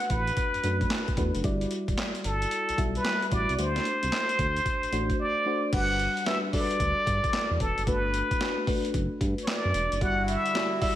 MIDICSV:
0, 0, Header, 1, 6, 480
1, 0, Start_track
1, 0, Key_signature, 1, "major"
1, 0, Tempo, 535714
1, 1291, Time_signature, 4, 2, 24, 8
1, 9816, End_track
2, 0, Start_track
2, 0, Title_t, "Muted trumpet"
2, 0, Program_c, 0, 59
2, 0, Note_on_c, 0, 78, 116
2, 95, Note_on_c, 0, 71, 91
2, 109, Note_off_c, 0, 78, 0
2, 1053, Note_off_c, 0, 71, 0
2, 2019, Note_on_c, 0, 69, 93
2, 2616, Note_off_c, 0, 69, 0
2, 2658, Note_on_c, 0, 71, 100
2, 2981, Note_on_c, 0, 74, 104
2, 2994, Note_off_c, 0, 71, 0
2, 3216, Note_off_c, 0, 74, 0
2, 3222, Note_on_c, 0, 72, 100
2, 4621, Note_off_c, 0, 72, 0
2, 4655, Note_on_c, 0, 74, 95
2, 5100, Note_off_c, 0, 74, 0
2, 5134, Note_on_c, 0, 78, 108
2, 5579, Note_off_c, 0, 78, 0
2, 5615, Note_on_c, 0, 76, 99
2, 5722, Note_off_c, 0, 76, 0
2, 5854, Note_on_c, 0, 74, 110
2, 6817, Note_on_c, 0, 69, 90
2, 6830, Note_off_c, 0, 74, 0
2, 7059, Note_on_c, 0, 71, 86
2, 7072, Note_off_c, 0, 69, 0
2, 7775, Note_off_c, 0, 71, 0
2, 8454, Note_on_c, 0, 73, 64
2, 8497, Note_on_c, 0, 74, 87
2, 8510, Note_off_c, 0, 73, 0
2, 8976, Note_on_c, 0, 78, 103
2, 8990, Note_off_c, 0, 74, 0
2, 9213, Note_on_c, 0, 76, 95
2, 9226, Note_off_c, 0, 78, 0
2, 9686, Note_off_c, 0, 76, 0
2, 9692, Note_on_c, 0, 76, 95
2, 9800, Note_off_c, 0, 76, 0
2, 9816, End_track
3, 0, Start_track
3, 0, Title_t, "FM electric piano"
3, 0, Program_c, 1, 5
3, 0, Control_c, 1, 64, 127
3, 0, Note_on_c, 1, 57, 75
3, 0, Note_on_c, 1, 62, 65
3, 0, Note_on_c, 1, 66, 68
3, 0, Note_on_c, 1, 71, 80
3, 144, Note_off_c, 1, 57, 0
3, 145, Note_off_c, 1, 62, 0
3, 147, Note_off_c, 1, 66, 0
3, 149, Note_off_c, 1, 71, 0
3, 568, Note_on_c, 1, 57, 72
3, 571, Note_on_c, 1, 62, 71
3, 575, Note_on_c, 1, 66, 67
3, 579, Note_on_c, 1, 71, 75
3, 980, Note_off_c, 1, 57, 0
3, 982, Note_off_c, 1, 62, 0
3, 984, Note_off_c, 1, 66, 0
3, 986, Note_off_c, 1, 71, 0
3, 1049, Note_on_c, 1, 57, 86
3, 1052, Note_on_c, 1, 62, 75
3, 1056, Note_on_c, 1, 66, 72
3, 1059, Note_on_c, 1, 71, 89
3, 1256, Note_off_c, 1, 57, 0
3, 1257, Note_off_c, 1, 62, 0
3, 1259, Note_off_c, 1, 66, 0
3, 1261, Note_off_c, 1, 71, 0
3, 1289, Note_on_c, 1, 55, 87
3, 1293, Note_on_c, 1, 64, 80
3, 1297, Note_on_c, 1, 66, 75
3, 1299, Note_on_c, 1, 74, 98
3, 1303, Control_c, 1, 64, 0
3, 1462, Control_c, 1, 64, 127
3, 2065, Note_off_c, 1, 55, 0
3, 2067, Note_off_c, 1, 64, 0
3, 2069, Note_off_c, 1, 66, 0
3, 2070, Note_off_c, 1, 74, 0
3, 2488, Note_on_c, 1, 55, 77
3, 2493, Note_on_c, 1, 64, 68
3, 2496, Note_on_c, 1, 66, 68
3, 2499, Note_on_c, 1, 76, 74
3, 2901, Note_off_c, 1, 55, 0
3, 2903, Note_off_c, 1, 64, 0
3, 2904, Note_off_c, 1, 66, 0
3, 2906, Note_off_c, 1, 76, 0
3, 2970, Note_on_c, 1, 55, 70
3, 2974, Note_on_c, 1, 64, 63
3, 2977, Note_on_c, 1, 66, 64
3, 2980, Note_on_c, 1, 74, 77
3, 3176, Note_off_c, 1, 55, 0
3, 3178, Note_off_c, 1, 64, 0
3, 3180, Note_off_c, 1, 66, 0
3, 3181, Note_off_c, 1, 74, 0
3, 3210, Note_on_c, 1, 57, 72
3, 3214, Note_on_c, 1, 62, 62
3, 3217, Note_on_c, 1, 66, 68
3, 3221, Note_on_c, 1, 72, 81
3, 3223, Control_c, 1, 64, 0
3, 3392, Control_c, 1, 64, 127
3, 3985, Note_off_c, 1, 57, 0
3, 3987, Note_off_c, 1, 62, 0
3, 3989, Note_off_c, 1, 66, 0
3, 3991, Note_off_c, 1, 72, 0
3, 4408, Note_on_c, 1, 57, 79
3, 4412, Note_on_c, 1, 62, 73
3, 4415, Note_on_c, 1, 66, 81
3, 4419, Note_on_c, 1, 72, 90
3, 4821, Note_off_c, 1, 57, 0
3, 4823, Note_off_c, 1, 62, 0
3, 4824, Note_off_c, 1, 66, 0
3, 4826, Note_off_c, 1, 72, 0
3, 4889, Note_on_c, 1, 57, 80
3, 4894, Note_on_c, 1, 62, 74
3, 4898, Note_on_c, 1, 66, 70
3, 4901, Note_on_c, 1, 72, 85
3, 5096, Note_off_c, 1, 57, 0
3, 5098, Note_off_c, 1, 62, 0
3, 5100, Note_off_c, 1, 66, 0
3, 5101, Note_off_c, 1, 72, 0
3, 5129, Note_on_c, 1, 55, 78
3, 5132, Note_on_c, 1, 62, 67
3, 5136, Note_on_c, 1, 66, 65
3, 5139, Note_on_c, 1, 71, 82
3, 5145, Control_c, 1, 64, 0
3, 5321, Control_c, 1, 64, 127
3, 5541, Note_off_c, 1, 55, 0
3, 5543, Note_off_c, 1, 62, 0
3, 5545, Note_off_c, 1, 66, 0
3, 5546, Note_off_c, 1, 71, 0
3, 5609, Note_on_c, 1, 55, 68
3, 5613, Note_on_c, 1, 62, 62
3, 5616, Note_on_c, 1, 66, 66
3, 5620, Note_on_c, 1, 71, 79
3, 5816, Note_off_c, 1, 55, 0
3, 5818, Note_off_c, 1, 62, 0
3, 5819, Note_off_c, 1, 66, 0
3, 5821, Note_off_c, 1, 71, 0
3, 5850, Note_on_c, 1, 55, 68
3, 5854, Note_on_c, 1, 62, 59
3, 5858, Note_on_c, 1, 66, 66
3, 5861, Note_on_c, 1, 69, 61
3, 5919, Note_on_c, 1, 71, 76
3, 5931, Note_off_c, 1, 69, 0
3, 6625, Note_off_c, 1, 55, 0
3, 6627, Note_off_c, 1, 62, 0
3, 6629, Note_off_c, 1, 66, 0
3, 6660, Note_off_c, 1, 71, 0
3, 7050, Note_on_c, 1, 57, 75
3, 7055, Note_on_c, 1, 62, 65
3, 7057, Note_on_c, 1, 66, 69
3, 7061, Note_on_c, 1, 71, 84
3, 7065, Control_c, 1, 64, 0
3, 7210, Control_c, 1, 64, 127
3, 7462, Note_off_c, 1, 57, 0
3, 7464, Note_off_c, 1, 62, 0
3, 7465, Note_off_c, 1, 66, 0
3, 7467, Note_off_c, 1, 71, 0
3, 7531, Note_on_c, 1, 57, 66
3, 7534, Note_on_c, 1, 62, 66
3, 7537, Note_on_c, 1, 66, 68
3, 7542, Note_on_c, 1, 71, 85
3, 7736, Note_off_c, 1, 57, 0
3, 7738, Note_off_c, 1, 62, 0
3, 7740, Note_off_c, 1, 66, 0
3, 7742, Note_off_c, 1, 71, 0
3, 7769, Note_on_c, 1, 57, 86
3, 7773, Note_on_c, 1, 62, 79
3, 7776, Note_on_c, 1, 66, 77
3, 7779, Note_on_c, 1, 71, 95
3, 8545, Note_off_c, 1, 57, 0
3, 8547, Note_off_c, 1, 62, 0
3, 8548, Note_off_c, 1, 66, 0
3, 8550, Note_off_c, 1, 71, 0
3, 8971, Note_on_c, 1, 55, 75
3, 8975, Note_on_c, 1, 64, 68
3, 8979, Note_on_c, 1, 66, 74
3, 8982, Control_c, 1, 64, 0
3, 8983, Note_on_c, 1, 74, 82
3, 9133, Control_c, 1, 64, 127
3, 9382, Note_off_c, 1, 55, 0
3, 9384, Note_off_c, 1, 64, 0
3, 9386, Note_off_c, 1, 66, 0
3, 9388, Note_off_c, 1, 74, 0
3, 9449, Note_on_c, 1, 55, 74
3, 9453, Note_on_c, 1, 64, 69
3, 9457, Note_on_c, 1, 66, 65
3, 9460, Note_on_c, 1, 74, 79
3, 9656, Note_off_c, 1, 55, 0
3, 9658, Note_off_c, 1, 64, 0
3, 9660, Note_off_c, 1, 66, 0
3, 9661, Note_off_c, 1, 74, 0
3, 9690, Note_on_c, 1, 55, 73
3, 9693, Note_on_c, 1, 64, 66
3, 9697, Note_on_c, 1, 66, 66
3, 9700, Note_on_c, 1, 74, 76
3, 9816, Note_off_c, 1, 55, 0
3, 9816, Note_off_c, 1, 64, 0
3, 9816, Note_off_c, 1, 66, 0
3, 9816, Note_off_c, 1, 74, 0
3, 9816, End_track
4, 0, Start_track
4, 0, Title_t, "Accordion"
4, 0, Program_c, 2, 21
4, 8970, Note_on_c, 2, 66, 83
4, 8971, Note_on_c, 2, 50, 74
4, 8971, Note_on_c, 2, 55, 66
4, 8971, Note_on_c, 2, 64, 68
4, 9816, Note_off_c, 2, 50, 0
4, 9816, Note_off_c, 2, 55, 0
4, 9816, Note_off_c, 2, 64, 0
4, 9816, Note_off_c, 2, 66, 0
4, 9816, End_track
5, 0, Start_track
5, 0, Title_t, "Analog synth bass"
5, 0, Program_c, 3, 38
5, 90, Note_on_c, 3, 33, 93
5, 280, Note_off_c, 3, 33, 0
5, 489, Note_on_c, 3, 42, 48
5, 522, Note_off_c, 3, 42, 0
5, 570, Note_on_c, 3, 42, 86
5, 761, Note_off_c, 3, 42, 0
5, 1051, Note_on_c, 3, 40, 93
5, 1175, Note_off_c, 3, 40, 0
5, 1209, Note_on_c, 3, 30, 88
5, 1275, Note_off_c, 3, 30, 0
5, 1291, Note_on_c, 3, 31, 101
5, 1481, Note_off_c, 3, 31, 0
5, 1686, Note_on_c, 3, 28, 85
5, 1753, Note_off_c, 3, 28, 0
5, 2013, Note_on_c, 3, 31, 94
5, 2202, Note_off_c, 3, 31, 0
5, 2411, Note_on_c, 3, 35, 48
5, 2444, Note_off_c, 3, 35, 0
5, 2489, Note_on_c, 3, 35, 89
5, 2680, Note_off_c, 3, 35, 0
5, 2973, Note_on_c, 3, 33, 90
5, 3096, Note_off_c, 3, 33, 0
5, 3129, Note_on_c, 3, 36, 91
5, 3195, Note_off_c, 3, 36, 0
5, 3211, Note_on_c, 3, 38, 108
5, 3401, Note_off_c, 3, 38, 0
5, 3609, Note_on_c, 3, 36, 84
5, 3675, Note_off_c, 3, 36, 0
5, 3932, Note_on_c, 3, 38, 100
5, 4122, Note_off_c, 3, 38, 0
5, 4328, Note_on_c, 3, 33, 44
5, 4361, Note_off_c, 3, 33, 0
5, 4410, Note_on_c, 3, 33, 86
5, 4600, Note_off_c, 3, 33, 0
5, 5131, Note_on_c, 3, 31, 104
5, 5445, Note_off_c, 3, 31, 0
5, 6092, Note_on_c, 3, 38, 93
5, 6216, Note_off_c, 3, 38, 0
5, 6331, Note_on_c, 3, 43, 100
5, 6455, Note_off_c, 3, 43, 0
5, 6725, Note_on_c, 3, 40, 92
5, 6792, Note_off_c, 3, 40, 0
5, 6811, Note_on_c, 3, 28, 101
5, 6935, Note_off_c, 3, 28, 0
5, 6968, Note_on_c, 3, 30, 89
5, 7034, Note_off_c, 3, 30, 0
5, 7052, Note_on_c, 3, 31, 93
5, 7366, Note_off_c, 3, 31, 0
5, 8011, Note_on_c, 3, 30, 99
5, 8135, Note_off_c, 3, 30, 0
5, 8250, Note_on_c, 3, 43, 102
5, 8374, Note_off_c, 3, 43, 0
5, 8647, Note_on_c, 3, 42, 91
5, 8714, Note_off_c, 3, 42, 0
5, 8731, Note_on_c, 3, 28, 96
5, 8855, Note_off_c, 3, 28, 0
5, 8887, Note_on_c, 3, 30, 85
5, 8953, Note_off_c, 3, 30, 0
5, 8971, Note_on_c, 3, 31, 102
5, 9285, Note_off_c, 3, 31, 0
5, 9816, End_track
6, 0, Start_track
6, 0, Title_t, "Drums"
6, 3, Note_on_c, 9, 42, 52
6, 88, Note_off_c, 9, 42, 0
6, 88, Note_on_c, 9, 42, 84
6, 90, Note_on_c, 9, 36, 96
6, 178, Note_off_c, 9, 42, 0
6, 180, Note_off_c, 9, 36, 0
6, 246, Note_on_c, 9, 42, 52
6, 329, Note_off_c, 9, 42, 0
6, 329, Note_on_c, 9, 42, 77
6, 330, Note_on_c, 9, 36, 88
6, 418, Note_off_c, 9, 42, 0
6, 420, Note_off_c, 9, 36, 0
6, 486, Note_on_c, 9, 42, 46
6, 570, Note_off_c, 9, 42, 0
6, 570, Note_on_c, 9, 42, 86
6, 659, Note_off_c, 9, 42, 0
6, 725, Note_on_c, 9, 36, 83
6, 725, Note_on_c, 9, 42, 51
6, 808, Note_on_c, 9, 38, 119
6, 810, Note_off_c, 9, 42, 0
6, 810, Note_on_c, 9, 42, 78
6, 815, Note_off_c, 9, 36, 0
6, 816, Note_on_c, 9, 39, 97
6, 898, Note_off_c, 9, 38, 0
6, 900, Note_off_c, 9, 42, 0
6, 906, Note_off_c, 9, 39, 0
6, 967, Note_on_c, 9, 42, 48
6, 969, Note_on_c, 9, 36, 87
6, 1048, Note_off_c, 9, 42, 0
6, 1048, Note_on_c, 9, 42, 83
6, 1051, Note_off_c, 9, 36, 0
6, 1051, Note_on_c, 9, 36, 85
6, 1138, Note_off_c, 9, 42, 0
6, 1141, Note_off_c, 9, 36, 0
6, 1206, Note_on_c, 9, 42, 58
6, 1290, Note_off_c, 9, 42, 0
6, 1290, Note_on_c, 9, 42, 77
6, 1291, Note_on_c, 9, 36, 111
6, 1379, Note_off_c, 9, 42, 0
6, 1380, Note_off_c, 9, 36, 0
6, 1445, Note_on_c, 9, 42, 53
6, 1530, Note_off_c, 9, 42, 0
6, 1530, Note_on_c, 9, 42, 74
6, 1619, Note_off_c, 9, 42, 0
6, 1686, Note_on_c, 9, 36, 86
6, 1686, Note_on_c, 9, 42, 57
6, 1770, Note_off_c, 9, 42, 0
6, 1770, Note_on_c, 9, 42, 70
6, 1772, Note_on_c, 9, 38, 105
6, 1775, Note_off_c, 9, 36, 0
6, 1780, Note_on_c, 9, 39, 97
6, 1859, Note_off_c, 9, 42, 0
6, 1861, Note_off_c, 9, 38, 0
6, 1870, Note_off_c, 9, 39, 0
6, 1925, Note_on_c, 9, 42, 55
6, 2010, Note_off_c, 9, 42, 0
6, 2010, Note_on_c, 9, 42, 77
6, 2100, Note_off_c, 9, 42, 0
6, 2168, Note_on_c, 9, 42, 60
6, 2251, Note_off_c, 9, 42, 0
6, 2251, Note_on_c, 9, 42, 78
6, 2341, Note_off_c, 9, 42, 0
6, 2408, Note_on_c, 9, 42, 53
6, 2490, Note_on_c, 9, 36, 93
6, 2492, Note_off_c, 9, 42, 0
6, 2492, Note_on_c, 9, 42, 86
6, 2580, Note_off_c, 9, 36, 0
6, 2582, Note_off_c, 9, 42, 0
6, 2646, Note_on_c, 9, 42, 47
6, 2729, Note_on_c, 9, 38, 114
6, 2731, Note_off_c, 9, 42, 0
6, 2731, Note_on_c, 9, 42, 81
6, 2738, Note_on_c, 9, 39, 92
6, 2819, Note_off_c, 9, 38, 0
6, 2821, Note_off_c, 9, 42, 0
6, 2827, Note_off_c, 9, 39, 0
6, 2889, Note_on_c, 9, 42, 45
6, 2971, Note_off_c, 9, 42, 0
6, 2971, Note_on_c, 9, 42, 75
6, 2972, Note_on_c, 9, 36, 89
6, 3060, Note_off_c, 9, 42, 0
6, 3061, Note_off_c, 9, 36, 0
6, 3129, Note_on_c, 9, 42, 53
6, 3213, Note_off_c, 9, 42, 0
6, 3213, Note_on_c, 9, 42, 81
6, 3303, Note_off_c, 9, 42, 0
6, 3368, Note_on_c, 9, 42, 54
6, 3370, Note_on_c, 9, 38, 64
6, 3452, Note_off_c, 9, 42, 0
6, 3452, Note_on_c, 9, 42, 69
6, 3460, Note_off_c, 9, 38, 0
6, 3542, Note_off_c, 9, 42, 0
6, 3609, Note_on_c, 9, 42, 60
6, 3692, Note_off_c, 9, 42, 0
6, 3692, Note_on_c, 9, 42, 68
6, 3694, Note_on_c, 9, 38, 104
6, 3703, Note_on_c, 9, 39, 92
6, 3782, Note_off_c, 9, 42, 0
6, 3784, Note_off_c, 9, 38, 0
6, 3792, Note_off_c, 9, 39, 0
6, 3846, Note_on_c, 9, 42, 55
6, 3932, Note_off_c, 9, 42, 0
6, 3932, Note_on_c, 9, 36, 99
6, 3932, Note_on_c, 9, 42, 83
6, 4022, Note_off_c, 9, 36, 0
6, 4022, Note_off_c, 9, 42, 0
6, 4090, Note_on_c, 9, 42, 61
6, 4172, Note_on_c, 9, 36, 88
6, 4173, Note_off_c, 9, 42, 0
6, 4173, Note_on_c, 9, 42, 76
6, 4261, Note_off_c, 9, 36, 0
6, 4263, Note_off_c, 9, 42, 0
6, 4330, Note_on_c, 9, 42, 47
6, 4413, Note_off_c, 9, 42, 0
6, 4413, Note_on_c, 9, 42, 80
6, 4503, Note_off_c, 9, 42, 0
6, 4566, Note_on_c, 9, 36, 82
6, 4567, Note_on_c, 9, 42, 51
6, 4656, Note_off_c, 9, 36, 0
6, 4657, Note_off_c, 9, 42, 0
6, 5131, Note_on_c, 9, 36, 115
6, 5131, Note_on_c, 9, 42, 74
6, 5131, Note_on_c, 9, 49, 88
6, 5221, Note_off_c, 9, 36, 0
6, 5221, Note_off_c, 9, 42, 0
6, 5221, Note_off_c, 9, 49, 0
6, 5372, Note_on_c, 9, 42, 64
6, 5461, Note_off_c, 9, 42, 0
6, 5529, Note_on_c, 9, 42, 52
6, 5612, Note_off_c, 9, 42, 0
6, 5612, Note_on_c, 9, 42, 68
6, 5614, Note_on_c, 9, 38, 116
6, 5622, Note_on_c, 9, 39, 87
6, 5702, Note_off_c, 9, 42, 0
6, 5703, Note_off_c, 9, 38, 0
6, 5712, Note_off_c, 9, 39, 0
6, 5852, Note_on_c, 9, 36, 91
6, 5853, Note_on_c, 9, 46, 82
6, 5942, Note_off_c, 9, 36, 0
6, 5942, Note_off_c, 9, 46, 0
6, 6010, Note_on_c, 9, 42, 59
6, 6092, Note_on_c, 9, 36, 85
6, 6093, Note_off_c, 9, 42, 0
6, 6093, Note_on_c, 9, 42, 77
6, 6181, Note_off_c, 9, 36, 0
6, 6183, Note_off_c, 9, 42, 0
6, 6331, Note_on_c, 9, 36, 91
6, 6335, Note_on_c, 9, 42, 91
6, 6421, Note_off_c, 9, 36, 0
6, 6425, Note_off_c, 9, 42, 0
6, 6486, Note_on_c, 9, 36, 85
6, 6487, Note_on_c, 9, 42, 51
6, 6570, Note_on_c, 9, 38, 116
6, 6572, Note_off_c, 9, 42, 0
6, 6572, Note_on_c, 9, 42, 84
6, 6576, Note_off_c, 9, 36, 0
6, 6578, Note_on_c, 9, 39, 94
6, 6659, Note_off_c, 9, 38, 0
6, 6662, Note_off_c, 9, 42, 0
6, 6668, Note_off_c, 9, 39, 0
6, 6811, Note_on_c, 9, 42, 76
6, 6812, Note_on_c, 9, 36, 85
6, 6900, Note_off_c, 9, 42, 0
6, 6902, Note_off_c, 9, 36, 0
6, 6969, Note_on_c, 9, 42, 53
6, 7052, Note_off_c, 9, 42, 0
6, 7052, Note_on_c, 9, 36, 118
6, 7052, Note_on_c, 9, 42, 75
6, 7141, Note_off_c, 9, 36, 0
6, 7141, Note_off_c, 9, 42, 0
6, 7291, Note_on_c, 9, 42, 71
6, 7381, Note_off_c, 9, 42, 0
6, 7446, Note_on_c, 9, 36, 85
6, 7448, Note_on_c, 9, 42, 57
6, 7532, Note_off_c, 9, 42, 0
6, 7532, Note_on_c, 9, 42, 75
6, 7534, Note_on_c, 9, 38, 114
6, 7536, Note_off_c, 9, 36, 0
6, 7543, Note_on_c, 9, 39, 96
6, 7622, Note_off_c, 9, 42, 0
6, 7624, Note_off_c, 9, 38, 0
6, 7632, Note_off_c, 9, 39, 0
6, 7771, Note_on_c, 9, 36, 107
6, 7771, Note_on_c, 9, 46, 85
6, 7861, Note_off_c, 9, 36, 0
6, 7861, Note_off_c, 9, 46, 0
6, 7927, Note_on_c, 9, 42, 55
6, 8011, Note_off_c, 9, 42, 0
6, 8011, Note_on_c, 9, 36, 91
6, 8011, Note_on_c, 9, 42, 78
6, 8100, Note_off_c, 9, 36, 0
6, 8100, Note_off_c, 9, 42, 0
6, 8250, Note_on_c, 9, 36, 91
6, 8252, Note_on_c, 9, 42, 81
6, 8340, Note_off_c, 9, 36, 0
6, 8341, Note_off_c, 9, 42, 0
6, 8407, Note_on_c, 9, 42, 49
6, 8489, Note_on_c, 9, 38, 122
6, 8491, Note_off_c, 9, 42, 0
6, 8491, Note_on_c, 9, 42, 77
6, 8498, Note_on_c, 9, 39, 93
6, 8579, Note_off_c, 9, 38, 0
6, 8581, Note_off_c, 9, 42, 0
6, 8587, Note_off_c, 9, 39, 0
6, 8730, Note_on_c, 9, 42, 79
6, 8819, Note_off_c, 9, 42, 0
6, 8888, Note_on_c, 9, 42, 57
6, 8971, Note_on_c, 9, 36, 111
6, 8972, Note_off_c, 9, 42, 0
6, 8972, Note_on_c, 9, 42, 72
6, 9061, Note_off_c, 9, 36, 0
6, 9062, Note_off_c, 9, 42, 0
6, 9212, Note_on_c, 9, 42, 77
6, 9301, Note_off_c, 9, 42, 0
6, 9369, Note_on_c, 9, 42, 56
6, 9453, Note_off_c, 9, 42, 0
6, 9453, Note_on_c, 9, 42, 72
6, 9454, Note_on_c, 9, 38, 115
6, 9463, Note_on_c, 9, 39, 87
6, 9542, Note_off_c, 9, 42, 0
6, 9544, Note_off_c, 9, 38, 0
6, 9553, Note_off_c, 9, 39, 0
6, 9691, Note_on_c, 9, 46, 86
6, 9692, Note_on_c, 9, 36, 101
6, 9781, Note_off_c, 9, 36, 0
6, 9781, Note_off_c, 9, 46, 0
6, 9816, End_track
0, 0, End_of_file